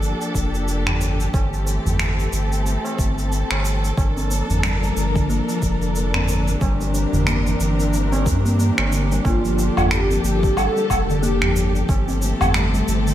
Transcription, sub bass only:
0, 0, Header, 1, 2, 480
1, 0, Start_track
1, 0, Tempo, 659341
1, 973, Time_signature, 4, 2, 24, 8
1, 9567, End_track
2, 0, Start_track
2, 0, Title_t, "Sub bass"
2, 0, Program_c, 0, 38
2, 0, Note_on_c, 0, 31, 77
2, 100, Note_off_c, 0, 31, 0
2, 254, Note_on_c, 0, 29, 100
2, 632, Note_on_c, 0, 31, 86
2, 643, Note_off_c, 0, 29, 0
2, 935, Note_off_c, 0, 31, 0
2, 975, Note_on_c, 0, 31, 101
2, 1301, Note_off_c, 0, 31, 0
2, 1351, Note_on_c, 0, 31, 97
2, 1655, Note_off_c, 0, 31, 0
2, 1691, Note_on_c, 0, 31, 82
2, 2019, Note_off_c, 0, 31, 0
2, 2174, Note_on_c, 0, 31, 95
2, 2501, Note_off_c, 0, 31, 0
2, 2552, Note_on_c, 0, 31, 89
2, 2855, Note_off_c, 0, 31, 0
2, 2893, Note_on_c, 0, 31, 93
2, 3220, Note_off_c, 0, 31, 0
2, 3273, Note_on_c, 0, 31, 95
2, 3575, Note_off_c, 0, 31, 0
2, 3611, Note_on_c, 0, 31, 83
2, 3939, Note_off_c, 0, 31, 0
2, 4093, Note_on_c, 0, 29, 91
2, 4472, Note_on_c, 0, 31, 90
2, 4483, Note_off_c, 0, 29, 0
2, 4775, Note_off_c, 0, 31, 0
2, 4814, Note_on_c, 0, 31, 98
2, 5140, Note_off_c, 0, 31, 0
2, 5191, Note_on_c, 0, 31, 98
2, 5495, Note_off_c, 0, 31, 0
2, 5531, Note_on_c, 0, 31, 85
2, 6014, Note_on_c, 0, 43, 87
2, 6025, Note_off_c, 0, 31, 0
2, 6341, Note_off_c, 0, 43, 0
2, 6392, Note_on_c, 0, 31, 89
2, 6695, Note_off_c, 0, 31, 0
2, 6735, Note_on_c, 0, 31, 100
2, 7061, Note_off_c, 0, 31, 0
2, 7113, Note_on_c, 0, 31, 94
2, 7415, Note_off_c, 0, 31, 0
2, 7450, Note_on_c, 0, 31, 82
2, 7779, Note_off_c, 0, 31, 0
2, 7935, Note_on_c, 0, 29, 95
2, 8313, Note_on_c, 0, 31, 94
2, 8324, Note_off_c, 0, 29, 0
2, 8616, Note_off_c, 0, 31, 0
2, 8654, Note_on_c, 0, 31, 98
2, 8981, Note_off_c, 0, 31, 0
2, 9033, Note_on_c, 0, 31, 103
2, 9336, Note_off_c, 0, 31, 0
2, 9375, Note_on_c, 0, 31, 84
2, 9567, Note_off_c, 0, 31, 0
2, 9567, End_track
0, 0, End_of_file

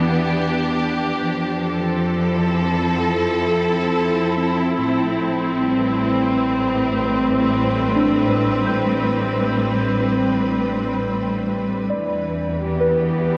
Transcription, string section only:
0, 0, Header, 1, 2, 480
1, 0, Start_track
1, 0, Key_signature, 0, "minor"
1, 0, Tempo, 895522
1, 658, Time_signature, 4, 2, 24, 8
1, 7167, End_track
2, 0, Start_track
2, 0, Title_t, "String section"
2, 0, Program_c, 0, 48
2, 0, Note_on_c, 0, 52, 76
2, 0, Note_on_c, 0, 59, 77
2, 0, Note_on_c, 0, 62, 61
2, 0, Note_on_c, 0, 67, 69
2, 654, Note_off_c, 0, 59, 0
2, 657, Note_on_c, 0, 53, 71
2, 662, Note_off_c, 0, 52, 0
2, 860, Note_on_c, 0, 69, 78
2, 985, Note_on_c, 0, 60, 79
2, 1181, Note_on_c, 0, 64, 67
2, 1419, Note_off_c, 0, 67, 0
2, 1422, Note_off_c, 0, 62, 0
2, 2575, Note_on_c, 0, 45, 77
2, 2578, Note_off_c, 0, 53, 0
2, 2989, Note_on_c, 0, 55, 73
2, 3091, Note_on_c, 0, 71, 66
2, 3269, Note_off_c, 0, 69, 0
2, 4114, Note_off_c, 0, 64, 0
2, 6416, Note_off_c, 0, 45, 0
2, 6416, Note_off_c, 0, 60, 0
2, 6419, Note_on_c, 0, 52, 77
2, 6423, Note_off_c, 0, 55, 0
2, 6746, Note_on_c, 0, 67, 83
2, 6824, Note_on_c, 0, 59, 77
2, 7130, Note_on_c, 0, 62, 83
2, 7167, Note_off_c, 0, 52, 0
2, 7167, Note_off_c, 0, 59, 0
2, 7167, Note_off_c, 0, 62, 0
2, 7167, Note_off_c, 0, 67, 0
2, 7167, Note_off_c, 0, 71, 0
2, 7167, End_track
0, 0, End_of_file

